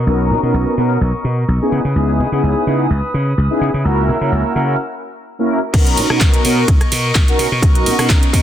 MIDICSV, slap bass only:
0, 0, Header, 1, 3, 480
1, 0, Start_track
1, 0, Key_signature, 5, "major"
1, 0, Tempo, 472441
1, 70, Time_signature, 4, 2, 24, 8
1, 8557, End_track
2, 0, Start_track
2, 0, Title_t, "Slap bass"
2, 0, Program_c, 0, 36
2, 66, Note_on_c, 0, 35, 91
2, 305, Note_on_c, 0, 47, 95
2, 321, Note_off_c, 0, 35, 0
2, 407, Note_off_c, 0, 47, 0
2, 435, Note_on_c, 0, 47, 86
2, 523, Note_off_c, 0, 47, 0
2, 545, Note_on_c, 0, 35, 76
2, 647, Note_off_c, 0, 35, 0
2, 786, Note_on_c, 0, 47, 84
2, 977, Note_off_c, 0, 47, 0
2, 1025, Note_on_c, 0, 35, 88
2, 1127, Note_off_c, 0, 35, 0
2, 1263, Note_on_c, 0, 47, 84
2, 1455, Note_off_c, 0, 47, 0
2, 1505, Note_on_c, 0, 35, 88
2, 1607, Note_off_c, 0, 35, 0
2, 1745, Note_on_c, 0, 49, 89
2, 1847, Note_off_c, 0, 49, 0
2, 1874, Note_on_c, 0, 49, 78
2, 1963, Note_off_c, 0, 49, 0
2, 1987, Note_on_c, 0, 37, 90
2, 2228, Note_on_c, 0, 49, 96
2, 2244, Note_off_c, 0, 37, 0
2, 2328, Note_off_c, 0, 49, 0
2, 2356, Note_on_c, 0, 49, 86
2, 2443, Note_off_c, 0, 49, 0
2, 2470, Note_on_c, 0, 37, 74
2, 2569, Note_off_c, 0, 37, 0
2, 2710, Note_on_c, 0, 49, 87
2, 2899, Note_off_c, 0, 49, 0
2, 2948, Note_on_c, 0, 37, 89
2, 3048, Note_off_c, 0, 37, 0
2, 3190, Note_on_c, 0, 49, 85
2, 3379, Note_off_c, 0, 49, 0
2, 3430, Note_on_c, 0, 37, 90
2, 3529, Note_off_c, 0, 37, 0
2, 3668, Note_on_c, 0, 49, 88
2, 3768, Note_off_c, 0, 49, 0
2, 3798, Note_on_c, 0, 49, 78
2, 3884, Note_off_c, 0, 49, 0
2, 3911, Note_on_c, 0, 37, 92
2, 4149, Note_on_c, 0, 49, 96
2, 4164, Note_off_c, 0, 37, 0
2, 4248, Note_off_c, 0, 49, 0
2, 4277, Note_on_c, 0, 49, 86
2, 4364, Note_off_c, 0, 49, 0
2, 4388, Note_on_c, 0, 37, 74
2, 4488, Note_off_c, 0, 37, 0
2, 4627, Note_on_c, 0, 49, 87
2, 4818, Note_off_c, 0, 49, 0
2, 5829, Note_on_c, 0, 35, 96
2, 6067, Note_on_c, 0, 47, 98
2, 6083, Note_off_c, 0, 35, 0
2, 6168, Note_off_c, 0, 47, 0
2, 6195, Note_on_c, 0, 47, 89
2, 6283, Note_off_c, 0, 47, 0
2, 6307, Note_on_c, 0, 35, 80
2, 6408, Note_off_c, 0, 35, 0
2, 6548, Note_on_c, 0, 47, 93
2, 6738, Note_off_c, 0, 47, 0
2, 6787, Note_on_c, 0, 35, 95
2, 6888, Note_off_c, 0, 35, 0
2, 7031, Note_on_c, 0, 47, 88
2, 7219, Note_off_c, 0, 47, 0
2, 7267, Note_on_c, 0, 35, 87
2, 7368, Note_off_c, 0, 35, 0
2, 7507, Note_on_c, 0, 47, 100
2, 7607, Note_off_c, 0, 47, 0
2, 7637, Note_on_c, 0, 47, 91
2, 7724, Note_off_c, 0, 47, 0
2, 7746, Note_on_c, 0, 35, 94
2, 7985, Note_on_c, 0, 47, 100
2, 8000, Note_off_c, 0, 35, 0
2, 8086, Note_off_c, 0, 47, 0
2, 8112, Note_on_c, 0, 47, 92
2, 8201, Note_off_c, 0, 47, 0
2, 8227, Note_on_c, 0, 35, 79
2, 8327, Note_off_c, 0, 35, 0
2, 8467, Note_on_c, 0, 47, 91
2, 8557, Note_off_c, 0, 47, 0
2, 8557, End_track
3, 0, Start_track
3, 0, Title_t, "Muted slap bass strokes"
3, 1153, Note_on_c, 9, 29, 42
3, 1254, Note_off_c, 9, 29, 0
3, 8557, End_track
0, 0, End_of_file